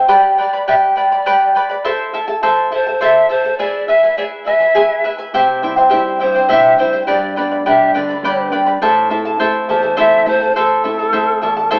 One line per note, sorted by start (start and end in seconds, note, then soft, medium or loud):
0.08 0.38 G4 medium
0.08 0.37 B4 medium
0.08 0.38 D5 medium
0.08 0.37 D5 medium
0.08 0.37 G5 medium
0.08 0.38 B5 medium
0.38 0.53 B4 medium
0.38 0.53 D5 medium
0.38 0.66 D5 medium
0.38 0.53 G5 medium
0.38 0.52 B5 medium
0.53 0.67 B4 soft
0.53 0.67 D5 medium
0.53 0.68 B5 medium
0.68 0.97 G4 medium
0.68 0.96 B4 medium
0.68 0.96 D5 medium
0.68 0.75 E5 medium
0.68 0.95 G5 medium
0.68 0.96 B5 medium
0.96 1.11 B4 medium
0.96 1.11 D5 medium
0.96 1.59 D5 medium
0.96 1.11 G5 medium
0.96 1.10 B5 medium
1.12 1.25 B4 soft
1.12 1.26 D5 soft
1.12 1.26 B5 medium
1.26 1.55 G4 medium
1.26 1.55 B4 medium
1.26 1.56 D5 medium
1.26 1.54 G5 medium
1.26 1.56 B5 loud
1.55 1.70 B4 medium
1.55 1.69 D5 medium
1.55 1.70 G5 medium
1.55 1.68 B5 medium
1.69 1.85 B4 soft
1.69 1.85 D5 soft
1.69 1.84 B5 medium
1.84 2.13 E4 medium
1.84 2.13 A4 medium
1.84 2.14 C5 medium
1.84 2.12 E5 medium
1.84 2.13 A5 medium
2.14 2.28 E4 medium
2.14 2.27 A4 medium
2.14 2.28 E5 medium
2.14 2.26 A5 medium
2.28 2.42 E4 medium
2.28 2.42 A4 medium
2.28 2.42 A5 medium
2.43 2.71 E4 medium
2.43 2.71 A4 medium
2.43 2.72 C5 medium
2.43 2.70 E5 medium
2.43 2.71 A5 medium
2.71 2.86 E4 medium
2.71 2.87 A4 medium
2.71 3.00 C5 medium
2.71 2.86 E5 medium
2.71 2.85 A5 medium
2.87 3.01 E4 soft
2.87 3.01 A4 soft
2.87 3.01 A5 medium
3.01 3.29 E4 medium
3.01 3.29 A4 medium
3.01 3.30 C5 medium
3.01 3.28 E5 medium
3.01 3.29 E5 medium
3.01 3.30 A5 medium
3.29 3.44 E4 medium
3.29 3.44 A4 medium
3.29 3.57 C5 medium
3.29 3.44 E5 medium
3.29 3.43 A5 medium
3.44 3.58 E4 soft
3.44 3.59 A4 medium
3.44 3.59 A5 soft
3.58 3.87 E4 medium
3.58 3.88 G#4 medium
3.58 3.88 B4 medium
3.58 3.89 D5 loud
3.58 3.87 E5 medium
3.58 3.88 G#5 medium
3.88 4.03 E4 medium
3.88 4.03 B4 medium
3.88 4.17 E5 medium
3.88 4.03 E5 medium
3.88 4.02 G#5 medium
4.03 4.17 E4 soft
4.03 4.17 B4 medium
4.03 4.17 G#5 medium
4.17 4.45 E4 medium
4.17 4.46 G#4 medium
4.17 4.46 B4 medium
4.17 4.24 D5 medium
4.17 4.45 E5 medium
4.17 4.46 G#5 medium
4.45 4.60 E4 medium
4.45 4.60 B4 medium
4.45 5.07 E5 medium
4.45 4.61 E5 medium
4.45 4.59 G#5 medium
4.60 4.74 E4 soft
4.60 4.74 B4 medium
4.60 4.75 G#5 medium
4.75 5.03 E4 medium
4.75 5.04 G#4 medium
4.75 5.04 B4 medium
4.75 5.03 E5 medium
4.75 5.04 G#5 medium
5.04 5.19 E4 medium
5.04 5.18 B4 medium
5.04 5.19 E5 medium
5.04 5.17 G#5 medium
5.18 5.33 E4 soft
5.18 5.34 B4 medium
5.18 5.33 G#5 medium
5.34 5.90 C3 medium
5.34 5.62 E4 medium
5.34 5.63 G4 medium
5.34 5.62 C5 medium
5.34 5.61 E5 medium
5.34 5.63 G5 medium
5.63 5.91 G3 soft
5.63 5.91 C4 soft
5.63 5.77 E4 medium
5.63 5.92 E4 medium
5.63 5.76 C5 medium
5.63 5.77 E5 medium
5.63 5.75 G5 medium
5.76 5.90 E4 medium
5.76 5.90 C5 medium
5.76 5.90 G5 medium
5.90 6.38 G3 soft
5.90 6.39 C4 soft
5.90 6.19 E4 medium
5.90 6.39 E4 soft
5.90 6.20 G4 medium
5.90 6.19 C5 medium
5.90 6.18 E5 medium
5.90 6.20 G5 medium
6.20 6.78 G2 medium
6.20 6.35 E4 medium
6.20 6.34 C5 medium
6.20 6.48 C5 medium
6.20 6.35 E5 medium
6.20 6.34 G5 medium
6.35 6.48 E4 soft
6.35 6.48 C5 medium
6.35 6.49 G5 medium
6.49 6.78 G3 soft
6.49 6.79 C4 soft
6.49 6.77 E4 medium
6.49 6.79 E4 medium
6.49 6.78 G4 medium
6.49 6.78 C5 medium
6.49 6.77 E5 medium
6.49 6.77 E5 loud
6.49 6.78 G5 medium
6.78 7.02 G3 soft
6.78 7.03 C4 soft
6.78 6.93 E4 medium
6.78 7.03 E4 soft
6.78 7.06 C5 medium
6.78 6.93 C5 medium
6.78 6.93 E5 medium
6.78 6.92 G5 medium
6.93 7.07 E4 soft
6.93 7.07 C5 soft
6.93 7.06 G5 medium
7.07 7.65 G2 medium
7.07 7.36 G4 medium
7.07 7.36 B4 medium
7.07 7.35 D5 medium
7.07 7.36 D5 medium
7.07 7.35 G5 medium
7.07 7.36 B5 medium
7.36 7.65 G3 soft
7.36 7.65 B3 soft
7.36 7.66 D4 medium
7.36 7.51 B4 medium
7.36 7.64 D5 medium
7.36 7.51 D5 medium
7.36 7.51 G5 medium
7.36 7.50 B5 medium
7.51 7.65 B4 soft
7.51 7.66 D5 soft
7.51 7.66 B5 medium
7.66 8.13 G3 soft
7.66 8.13 B3 soft
7.66 8.13 D4 medium
7.66 7.95 G4 medium
7.66 7.94 B4 medium
7.66 7.94 D5 medium
7.66 7.93 E5 medium
7.66 7.93 G5 medium
7.66 7.95 B5 medium
7.94 8.52 D3 medium
7.94 8.09 B4 medium
7.94 8.56 D5 medium
7.94 8.09 D5 medium
7.94 8.09 G5 medium
7.94 8.08 B5 medium
8.09 8.24 B4 soft
8.09 8.24 D5 soft
8.09 8.24 B5 medium
8.23 8.51 G3 soft
8.23 8.52 B3 soft
8.23 8.52 D4 medium
8.23 8.53 G4 medium
8.23 8.51 B4 medium
8.23 8.52 D5 medium
8.23 8.50 G5 medium
8.23 8.51 B5 medium
8.52 8.76 G3 soft
8.52 8.76 B3 soft
8.52 8.77 D4 soft
8.52 8.67 B4 medium
8.52 8.66 D5 medium
8.52 8.67 G5 medium
8.52 8.65 B5 medium
8.66 8.82 B4 medium
8.66 8.82 D5 medium
8.66 8.82 B5 medium
8.81 9.38 A2 medium
8.81 9.10 E4 medium
8.81 9.10 A4 medium
8.81 9.11 C5 medium
8.81 9.09 E5 medium
8.81 9.10 A5 medium
9.10 9.38 A3 soft
9.10 9.38 C4 medium
9.10 9.26 E4 medium
9.10 9.39 E4 medium
9.10 9.25 A4 medium
9.10 9.25 E5 medium
9.10 9.24 A5 medium
9.25 9.39 E4 medium
9.25 9.40 A4 medium
9.25 9.40 A5 medium
9.39 9.86 A3 soft
9.39 9.86 C4 soft
9.39 9.68 E4 medium
9.39 9.87 E4 medium
9.39 9.69 A4 medium
9.39 9.69 C5 medium
9.39 9.68 E5 medium
9.39 9.69 A5 medium
9.69 10.26 E2 medium
9.69 9.83 E4 medium
9.69 9.82 A4 medium
9.69 10.00 C5 medium
9.69 9.84 E5 medium
9.69 9.81 A5 medium
9.83 9.96 E4 soft
9.83 9.96 A4 medium
9.83 9.97 A5 soft
9.97 10.25 A3 medium
9.97 10.25 C4 soft
9.97 10.26 E4 medium
9.97 10.26 A4 medium
9.97 10.27 C5 medium
9.97 10.25 E5 medium
9.97 10.27 E5 medium
9.97 10.27 A5 medium
10.26 10.50 A3 soft
10.26 10.50 C4 soft
10.26 10.50 E4 medium
10.26 10.41 E4 medium
10.26 10.41 A4 medium
10.26 10.57 C5 loud
10.26 10.41 E5 medium
10.26 10.40 A5 medium
10.41 10.55 E4 soft
10.41 10.55 A4 soft
10.41 10.56 A5 soft
10.56 11.13 A2 medium
10.56 10.83 E4 medium
10.56 11.72 A4 medium
10.56 10.84 A4 medium
10.56 10.85 C5 medium
10.56 10.83 E5 medium
10.56 10.84 A5 medium
10.84 11.12 A3 soft
10.84 11.13 C4 soft
10.84 10.99 E4 medium
10.84 11.13 E4 medium
10.84 10.98 A4 medium
10.84 10.99 E5 medium
10.84 10.98 A5 medium
10.99 11.12 E4 soft
10.99 11.12 A4 soft
10.99 11.13 A5 soft
11.13 11.60 A3 soft
11.13 11.61 C4 soft
11.13 11.42 E4 medium
11.13 11.61 E4 medium
11.13 11.42 A4 medium
11.13 11.43 C5 medium
11.13 11.40 E5 medium
11.13 11.42 A5 medium
11.42 11.79 E2 medium
11.42 11.57 E4 medium
11.42 11.57 A4 medium
11.42 11.57 E5 medium
11.42 11.56 A5 medium
11.57 11.70 E4 medium
11.57 11.70 A4 soft
11.57 11.70 A5 medium
11.71 11.79 A3 soft
11.71 11.79 C4 soft
11.71 11.79 E4 medium
11.71 11.79 A4 medium
11.71 11.79 C5 loud
11.71 11.79 E5 loud
11.71 11.79 A5 loud